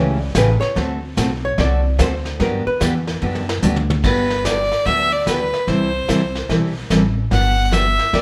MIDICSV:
0, 0, Header, 1, 7, 480
1, 0, Start_track
1, 0, Key_signature, 1, "major"
1, 0, Tempo, 409556
1, 895, Time_signature, 4, 2, 24, 8
1, 9630, End_track
2, 0, Start_track
2, 0, Title_t, "Fiddle"
2, 0, Program_c, 0, 110
2, 4727, Note_on_c, 0, 71, 85
2, 5210, Note_on_c, 0, 74, 94
2, 5228, Note_off_c, 0, 71, 0
2, 5695, Note_on_c, 0, 76, 105
2, 5712, Note_off_c, 0, 74, 0
2, 6003, Note_on_c, 0, 74, 92
2, 6020, Note_off_c, 0, 76, 0
2, 6172, Note_off_c, 0, 74, 0
2, 6180, Note_on_c, 0, 71, 89
2, 6662, Note_on_c, 0, 72, 86
2, 6680, Note_off_c, 0, 71, 0
2, 7618, Note_off_c, 0, 72, 0
2, 8576, Note_on_c, 0, 78, 95
2, 9062, Note_on_c, 0, 76, 97
2, 9080, Note_off_c, 0, 78, 0
2, 9533, Note_on_c, 0, 74, 90
2, 9551, Note_off_c, 0, 76, 0
2, 9630, Note_off_c, 0, 74, 0
2, 9630, End_track
3, 0, Start_track
3, 0, Title_t, "Hollow-body jazz guitar"
3, 0, Program_c, 1, 26
3, 0, Note_on_c, 1, 73, 98
3, 239, Note_off_c, 1, 73, 0
3, 239, Note_on_c, 1, 74, 115
3, 407, Note_off_c, 1, 74, 0
3, 443, Note_on_c, 1, 71, 90
3, 705, Note_off_c, 1, 71, 0
3, 710, Note_on_c, 1, 73, 114
3, 917, Note_off_c, 1, 73, 0
3, 917, Note_on_c, 1, 72, 104
3, 1096, Note_off_c, 1, 72, 0
3, 1698, Note_on_c, 1, 73, 95
3, 1855, Note_off_c, 1, 73, 0
3, 1877, Note_on_c, 1, 74, 107
3, 2312, Note_off_c, 1, 74, 0
3, 2366, Note_on_c, 1, 72, 98
3, 2796, Note_off_c, 1, 72, 0
3, 2841, Note_on_c, 1, 70, 83
3, 3124, Note_off_c, 1, 70, 0
3, 3128, Note_on_c, 1, 71, 93
3, 3572, Note_off_c, 1, 71, 0
3, 9630, End_track
4, 0, Start_track
4, 0, Title_t, "Steel-string acoustic guitar"
4, 0, Program_c, 2, 25
4, 0, Note_on_c, 2, 49, 57
4, 0, Note_on_c, 2, 52, 58
4, 0, Note_on_c, 2, 57, 64
4, 0, Note_on_c, 2, 61, 67
4, 0, Note_on_c, 2, 67, 63
4, 189, Note_off_c, 2, 49, 0
4, 192, Note_off_c, 2, 52, 0
4, 194, Note_off_c, 2, 57, 0
4, 196, Note_off_c, 2, 61, 0
4, 197, Note_off_c, 2, 67, 0
4, 406, Note_on_c, 2, 49, 72
4, 411, Note_on_c, 2, 52, 74
4, 416, Note_on_c, 2, 61, 77
4, 417, Note_on_c, 2, 57, 78
4, 422, Note_on_c, 2, 67, 78
4, 547, Note_off_c, 2, 49, 0
4, 549, Note_off_c, 2, 52, 0
4, 552, Note_off_c, 2, 57, 0
4, 552, Note_off_c, 2, 61, 0
4, 555, Note_off_c, 2, 67, 0
4, 881, Note_on_c, 2, 50, 58
4, 892, Note_on_c, 2, 60, 62
4, 893, Note_on_c, 2, 57, 64
4, 896, Note_on_c, 2, 66, 68
4, 900, Note_on_c, 2, 69, 66
4, 1145, Note_off_c, 2, 50, 0
4, 1150, Note_off_c, 2, 60, 0
4, 1151, Note_off_c, 2, 57, 0
4, 1152, Note_off_c, 2, 66, 0
4, 1154, Note_off_c, 2, 69, 0
4, 1369, Note_on_c, 2, 50, 74
4, 1371, Note_on_c, 2, 57, 76
4, 1377, Note_on_c, 2, 60, 70
4, 1381, Note_on_c, 2, 66, 72
4, 1381, Note_on_c, 2, 69, 76
4, 1507, Note_off_c, 2, 50, 0
4, 1509, Note_off_c, 2, 57, 0
4, 1511, Note_off_c, 2, 60, 0
4, 1513, Note_off_c, 2, 66, 0
4, 1514, Note_off_c, 2, 69, 0
4, 1849, Note_on_c, 2, 50, 64
4, 1849, Note_on_c, 2, 57, 58
4, 1857, Note_on_c, 2, 60, 67
4, 1857, Note_on_c, 2, 66, 68
4, 1865, Note_on_c, 2, 69, 61
4, 2108, Note_off_c, 2, 50, 0
4, 2108, Note_off_c, 2, 57, 0
4, 2112, Note_off_c, 2, 60, 0
4, 2112, Note_off_c, 2, 66, 0
4, 2116, Note_off_c, 2, 69, 0
4, 2325, Note_on_c, 2, 50, 71
4, 2332, Note_on_c, 2, 57, 69
4, 2337, Note_on_c, 2, 60, 75
4, 2339, Note_on_c, 2, 66, 84
4, 2344, Note_on_c, 2, 69, 78
4, 2465, Note_off_c, 2, 50, 0
4, 2468, Note_off_c, 2, 57, 0
4, 2471, Note_off_c, 2, 60, 0
4, 2472, Note_off_c, 2, 66, 0
4, 2475, Note_off_c, 2, 69, 0
4, 2808, Note_on_c, 2, 50, 59
4, 2811, Note_on_c, 2, 54, 63
4, 2819, Note_on_c, 2, 59, 63
4, 2820, Note_on_c, 2, 62, 62
4, 2821, Note_on_c, 2, 67, 71
4, 3067, Note_off_c, 2, 50, 0
4, 3069, Note_off_c, 2, 54, 0
4, 3073, Note_off_c, 2, 59, 0
4, 3073, Note_off_c, 2, 62, 0
4, 3074, Note_off_c, 2, 67, 0
4, 3283, Note_on_c, 2, 50, 76
4, 3289, Note_on_c, 2, 54, 68
4, 3293, Note_on_c, 2, 59, 85
4, 3298, Note_on_c, 2, 62, 82
4, 3300, Note_on_c, 2, 67, 79
4, 3424, Note_off_c, 2, 50, 0
4, 3426, Note_off_c, 2, 54, 0
4, 3428, Note_off_c, 2, 59, 0
4, 3431, Note_off_c, 2, 62, 0
4, 3432, Note_off_c, 2, 67, 0
4, 3772, Note_on_c, 2, 50, 62
4, 3778, Note_on_c, 2, 54, 60
4, 3779, Note_on_c, 2, 59, 61
4, 3786, Note_on_c, 2, 62, 68
4, 3788, Note_on_c, 2, 67, 69
4, 4029, Note_off_c, 2, 50, 0
4, 4032, Note_off_c, 2, 54, 0
4, 4032, Note_off_c, 2, 59, 0
4, 4036, Note_off_c, 2, 62, 0
4, 4037, Note_off_c, 2, 67, 0
4, 4249, Note_on_c, 2, 50, 73
4, 4256, Note_on_c, 2, 54, 75
4, 4263, Note_on_c, 2, 59, 80
4, 4264, Note_on_c, 2, 62, 74
4, 4267, Note_on_c, 2, 67, 74
4, 4386, Note_off_c, 2, 50, 0
4, 4390, Note_off_c, 2, 54, 0
4, 4393, Note_off_c, 2, 59, 0
4, 4394, Note_off_c, 2, 62, 0
4, 4395, Note_off_c, 2, 67, 0
4, 4729, Note_on_c, 2, 50, 56
4, 4736, Note_on_c, 2, 54, 56
4, 4740, Note_on_c, 2, 59, 62
4, 4744, Note_on_c, 2, 67, 60
4, 4746, Note_on_c, 2, 62, 55
4, 4987, Note_off_c, 2, 50, 0
4, 4991, Note_off_c, 2, 54, 0
4, 4993, Note_off_c, 2, 59, 0
4, 4995, Note_off_c, 2, 67, 0
4, 4996, Note_off_c, 2, 62, 0
4, 5200, Note_on_c, 2, 50, 58
4, 5210, Note_on_c, 2, 54, 69
4, 5213, Note_on_c, 2, 59, 67
4, 5216, Note_on_c, 2, 62, 75
4, 5223, Note_on_c, 2, 67, 67
4, 5342, Note_off_c, 2, 50, 0
4, 5347, Note_off_c, 2, 54, 0
4, 5348, Note_off_c, 2, 59, 0
4, 5350, Note_off_c, 2, 62, 0
4, 5353, Note_off_c, 2, 67, 0
4, 5686, Note_on_c, 2, 50, 57
4, 5691, Note_on_c, 2, 54, 57
4, 5695, Note_on_c, 2, 59, 56
4, 5703, Note_on_c, 2, 62, 62
4, 5707, Note_on_c, 2, 67, 57
4, 5946, Note_off_c, 2, 50, 0
4, 5949, Note_off_c, 2, 54, 0
4, 5951, Note_off_c, 2, 59, 0
4, 5954, Note_off_c, 2, 62, 0
4, 5956, Note_off_c, 2, 67, 0
4, 6164, Note_on_c, 2, 50, 64
4, 6172, Note_on_c, 2, 54, 70
4, 6173, Note_on_c, 2, 59, 68
4, 6183, Note_on_c, 2, 62, 73
4, 6185, Note_on_c, 2, 67, 77
4, 6304, Note_off_c, 2, 50, 0
4, 6308, Note_off_c, 2, 54, 0
4, 6309, Note_off_c, 2, 59, 0
4, 6313, Note_off_c, 2, 62, 0
4, 6315, Note_off_c, 2, 67, 0
4, 6643, Note_on_c, 2, 48, 54
4, 6650, Note_on_c, 2, 52, 55
4, 6650, Note_on_c, 2, 55, 56
4, 6655, Note_on_c, 2, 60, 66
4, 6658, Note_on_c, 2, 64, 63
4, 6660, Note_on_c, 2, 69, 61
4, 6905, Note_off_c, 2, 48, 0
4, 6908, Note_off_c, 2, 52, 0
4, 6909, Note_off_c, 2, 55, 0
4, 6911, Note_off_c, 2, 60, 0
4, 6912, Note_off_c, 2, 64, 0
4, 6913, Note_off_c, 2, 69, 0
4, 7126, Note_on_c, 2, 48, 65
4, 7131, Note_on_c, 2, 52, 69
4, 7131, Note_on_c, 2, 55, 72
4, 7137, Note_on_c, 2, 64, 80
4, 7138, Note_on_c, 2, 60, 70
4, 7141, Note_on_c, 2, 69, 71
4, 7265, Note_off_c, 2, 48, 0
4, 7268, Note_off_c, 2, 52, 0
4, 7268, Note_off_c, 2, 55, 0
4, 7271, Note_off_c, 2, 60, 0
4, 7271, Note_off_c, 2, 64, 0
4, 7273, Note_off_c, 2, 69, 0
4, 7604, Note_on_c, 2, 48, 56
4, 7609, Note_on_c, 2, 52, 61
4, 7612, Note_on_c, 2, 55, 60
4, 7615, Note_on_c, 2, 60, 57
4, 7620, Note_on_c, 2, 64, 61
4, 7621, Note_on_c, 2, 69, 59
4, 7866, Note_off_c, 2, 48, 0
4, 7868, Note_off_c, 2, 52, 0
4, 7870, Note_off_c, 2, 55, 0
4, 7871, Note_off_c, 2, 60, 0
4, 7874, Note_off_c, 2, 64, 0
4, 7874, Note_off_c, 2, 69, 0
4, 8089, Note_on_c, 2, 48, 65
4, 8094, Note_on_c, 2, 52, 68
4, 8097, Note_on_c, 2, 55, 70
4, 8100, Note_on_c, 2, 60, 75
4, 8102, Note_on_c, 2, 64, 70
4, 8105, Note_on_c, 2, 69, 80
4, 8227, Note_off_c, 2, 48, 0
4, 8230, Note_off_c, 2, 52, 0
4, 8231, Note_off_c, 2, 55, 0
4, 8233, Note_off_c, 2, 60, 0
4, 8234, Note_off_c, 2, 64, 0
4, 8235, Note_off_c, 2, 69, 0
4, 8561, Note_on_c, 2, 50, 50
4, 8566, Note_on_c, 2, 54, 55
4, 8574, Note_on_c, 2, 59, 60
4, 8577, Note_on_c, 2, 62, 62
4, 8579, Note_on_c, 2, 67, 59
4, 8825, Note_off_c, 2, 50, 0
4, 8827, Note_off_c, 2, 54, 0
4, 8831, Note_off_c, 2, 59, 0
4, 8833, Note_off_c, 2, 62, 0
4, 8834, Note_off_c, 2, 67, 0
4, 9036, Note_on_c, 2, 50, 68
4, 9042, Note_on_c, 2, 54, 76
4, 9043, Note_on_c, 2, 59, 78
4, 9047, Note_on_c, 2, 62, 74
4, 9049, Note_on_c, 2, 67, 78
4, 9181, Note_off_c, 2, 50, 0
4, 9184, Note_off_c, 2, 54, 0
4, 9185, Note_off_c, 2, 59, 0
4, 9186, Note_off_c, 2, 62, 0
4, 9188, Note_off_c, 2, 67, 0
4, 9524, Note_on_c, 2, 50, 58
4, 9529, Note_on_c, 2, 54, 55
4, 9534, Note_on_c, 2, 59, 54
4, 9539, Note_on_c, 2, 62, 65
4, 9543, Note_on_c, 2, 67, 62
4, 9630, Note_off_c, 2, 50, 0
4, 9630, Note_off_c, 2, 54, 0
4, 9630, Note_off_c, 2, 59, 0
4, 9630, Note_off_c, 2, 62, 0
4, 9630, Note_off_c, 2, 67, 0
4, 9630, End_track
5, 0, Start_track
5, 0, Title_t, "Upright bass"
5, 0, Program_c, 3, 32
5, 0, Note_on_c, 3, 37, 89
5, 399, Note_off_c, 3, 37, 0
5, 408, Note_on_c, 3, 33, 101
5, 701, Note_off_c, 3, 33, 0
5, 893, Note_on_c, 3, 38, 80
5, 1359, Note_off_c, 3, 38, 0
5, 1373, Note_on_c, 3, 35, 90
5, 1839, Note_off_c, 3, 35, 0
5, 1852, Note_on_c, 3, 36, 94
5, 2318, Note_off_c, 3, 36, 0
5, 2329, Note_on_c, 3, 38, 105
5, 2796, Note_off_c, 3, 38, 0
5, 2811, Note_on_c, 3, 43, 90
5, 3100, Note_off_c, 3, 43, 0
5, 3288, Note_on_c, 3, 40, 93
5, 3755, Note_off_c, 3, 40, 0
5, 3774, Note_on_c, 3, 42, 90
5, 4238, Note_off_c, 3, 42, 0
5, 4255, Note_on_c, 3, 38, 102
5, 4719, Note_off_c, 3, 38, 0
5, 4735, Note_on_c, 3, 31, 81
5, 5501, Note_off_c, 3, 31, 0
5, 5695, Note_on_c, 3, 38, 77
5, 6462, Note_off_c, 3, 38, 0
5, 6651, Note_on_c, 3, 36, 84
5, 7036, Note_off_c, 3, 36, 0
5, 7130, Note_on_c, 3, 36, 78
5, 7539, Note_off_c, 3, 36, 0
5, 7609, Note_on_c, 3, 35, 84
5, 8019, Note_off_c, 3, 35, 0
5, 8090, Note_on_c, 3, 33, 85
5, 8500, Note_off_c, 3, 33, 0
5, 8569, Note_on_c, 3, 31, 84
5, 9339, Note_off_c, 3, 31, 0
5, 9530, Note_on_c, 3, 38, 83
5, 9630, Note_off_c, 3, 38, 0
5, 9630, End_track
6, 0, Start_track
6, 0, Title_t, "Muted upright bass strokes"
6, 719, Note_on_c, 9, 29, 38
6, 836, Note_off_c, 9, 29, 0
6, 3120, Note_on_c, 9, 29, 44
6, 3237, Note_off_c, 9, 29, 0
6, 9630, End_track
7, 0, Start_track
7, 0, Title_t, "Drums"
7, 408, Note_on_c, 9, 38, 74
7, 408, Note_on_c, 9, 44, 62
7, 411, Note_on_c, 9, 36, 22
7, 526, Note_off_c, 9, 38, 0
7, 526, Note_off_c, 9, 44, 0
7, 528, Note_off_c, 9, 36, 0
7, 723, Note_on_c, 9, 38, 44
7, 841, Note_off_c, 9, 38, 0
7, 892, Note_on_c, 9, 36, 26
7, 894, Note_on_c, 9, 25, 51
7, 894, Note_on_c, 9, 38, 47
7, 1009, Note_off_c, 9, 36, 0
7, 1011, Note_off_c, 9, 38, 0
7, 1372, Note_on_c, 9, 36, 26
7, 1375, Note_on_c, 9, 38, 69
7, 1375, Note_on_c, 9, 44, 62
7, 1489, Note_off_c, 9, 36, 0
7, 1492, Note_off_c, 9, 38, 0
7, 1492, Note_off_c, 9, 44, 0
7, 1851, Note_off_c, 9, 25, 0
7, 1851, Note_on_c, 9, 25, 53
7, 1851, Note_on_c, 9, 36, 27
7, 1851, Note_on_c, 9, 38, 50
7, 1968, Note_off_c, 9, 36, 0
7, 1969, Note_off_c, 9, 38, 0
7, 2330, Note_on_c, 9, 36, 28
7, 2331, Note_on_c, 9, 38, 74
7, 2331, Note_on_c, 9, 44, 65
7, 2448, Note_off_c, 9, 36, 0
7, 2448, Note_off_c, 9, 38, 0
7, 2448, Note_off_c, 9, 44, 0
7, 2639, Note_on_c, 9, 38, 43
7, 2756, Note_off_c, 9, 38, 0
7, 2808, Note_off_c, 9, 25, 0
7, 2808, Note_on_c, 9, 25, 52
7, 2808, Note_on_c, 9, 38, 45
7, 2810, Note_on_c, 9, 36, 26
7, 2925, Note_off_c, 9, 38, 0
7, 2927, Note_off_c, 9, 36, 0
7, 3291, Note_on_c, 9, 36, 28
7, 3291, Note_on_c, 9, 38, 71
7, 3291, Note_on_c, 9, 44, 62
7, 3408, Note_off_c, 9, 36, 0
7, 3408, Note_off_c, 9, 38, 0
7, 3408, Note_off_c, 9, 44, 0
7, 3602, Note_on_c, 9, 38, 42
7, 3719, Note_off_c, 9, 38, 0
7, 3769, Note_on_c, 9, 48, 55
7, 3886, Note_off_c, 9, 48, 0
7, 3928, Note_on_c, 9, 48, 60
7, 4046, Note_off_c, 9, 48, 0
7, 4091, Note_on_c, 9, 38, 80
7, 4208, Note_off_c, 9, 38, 0
7, 4249, Note_on_c, 9, 44, 68
7, 4249, Note_on_c, 9, 48, 70
7, 4366, Note_off_c, 9, 44, 0
7, 4366, Note_off_c, 9, 48, 0
7, 4409, Note_on_c, 9, 47, 71
7, 4526, Note_off_c, 9, 47, 0
7, 4571, Note_on_c, 9, 47, 93
7, 4688, Note_off_c, 9, 47, 0
7, 4733, Note_on_c, 9, 36, 69
7, 4734, Note_off_c, 9, 25, 0
7, 4734, Note_on_c, 9, 25, 51
7, 4734, Note_on_c, 9, 38, 41
7, 4734, Note_on_c, 9, 49, 69
7, 4850, Note_off_c, 9, 36, 0
7, 4851, Note_off_c, 9, 38, 0
7, 4851, Note_off_c, 9, 49, 0
7, 5044, Note_on_c, 9, 38, 45
7, 5161, Note_off_c, 9, 38, 0
7, 5213, Note_on_c, 9, 36, 25
7, 5215, Note_on_c, 9, 38, 63
7, 5215, Note_on_c, 9, 44, 60
7, 5330, Note_off_c, 9, 36, 0
7, 5332, Note_off_c, 9, 38, 0
7, 5332, Note_off_c, 9, 44, 0
7, 5528, Note_on_c, 9, 38, 40
7, 5645, Note_off_c, 9, 38, 0
7, 5694, Note_on_c, 9, 36, 25
7, 5700, Note_off_c, 9, 25, 0
7, 5700, Note_on_c, 9, 25, 54
7, 5700, Note_on_c, 9, 38, 45
7, 5811, Note_off_c, 9, 36, 0
7, 5817, Note_off_c, 9, 38, 0
7, 6173, Note_on_c, 9, 36, 21
7, 6175, Note_on_c, 9, 38, 60
7, 6175, Note_on_c, 9, 44, 58
7, 6290, Note_off_c, 9, 36, 0
7, 6292, Note_off_c, 9, 38, 0
7, 6292, Note_off_c, 9, 44, 0
7, 6487, Note_on_c, 9, 38, 36
7, 6604, Note_off_c, 9, 38, 0
7, 6652, Note_on_c, 9, 36, 19
7, 6656, Note_off_c, 9, 25, 0
7, 6656, Note_on_c, 9, 25, 52
7, 6656, Note_on_c, 9, 38, 42
7, 6769, Note_off_c, 9, 36, 0
7, 6773, Note_off_c, 9, 38, 0
7, 7131, Note_on_c, 9, 36, 23
7, 7133, Note_on_c, 9, 38, 62
7, 7133, Note_on_c, 9, 44, 58
7, 7248, Note_off_c, 9, 36, 0
7, 7250, Note_off_c, 9, 38, 0
7, 7250, Note_off_c, 9, 44, 0
7, 7446, Note_on_c, 9, 38, 39
7, 7563, Note_off_c, 9, 38, 0
7, 7610, Note_on_c, 9, 36, 23
7, 7612, Note_off_c, 9, 25, 0
7, 7612, Note_on_c, 9, 25, 55
7, 7612, Note_on_c, 9, 38, 47
7, 7727, Note_off_c, 9, 36, 0
7, 7729, Note_off_c, 9, 38, 0
7, 8090, Note_on_c, 9, 36, 25
7, 8092, Note_on_c, 9, 38, 65
7, 8092, Note_on_c, 9, 44, 51
7, 8207, Note_off_c, 9, 36, 0
7, 8209, Note_off_c, 9, 38, 0
7, 8209, Note_off_c, 9, 44, 0
7, 8569, Note_off_c, 9, 25, 0
7, 8569, Note_on_c, 9, 25, 50
7, 8569, Note_on_c, 9, 36, 21
7, 8569, Note_on_c, 9, 38, 43
7, 8686, Note_off_c, 9, 38, 0
7, 8687, Note_off_c, 9, 36, 0
7, 9050, Note_on_c, 9, 36, 25
7, 9052, Note_on_c, 9, 38, 60
7, 9052, Note_on_c, 9, 44, 58
7, 9167, Note_off_c, 9, 36, 0
7, 9169, Note_off_c, 9, 38, 0
7, 9169, Note_off_c, 9, 44, 0
7, 9364, Note_on_c, 9, 38, 39
7, 9481, Note_off_c, 9, 38, 0
7, 9531, Note_on_c, 9, 36, 20
7, 9534, Note_off_c, 9, 25, 0
7, 9534, Note_on_c, 9, 25, 48
7, 9534, Note_on_c, 9, 38, 46
7, 9630, Note_off_c, 9, 25, 0
7, 9630, Note_off_c, 9, 36, 0
7, 9630, Note_off_c, 9, 38, 0
7, 9630, End_track
0, 0, End_of_file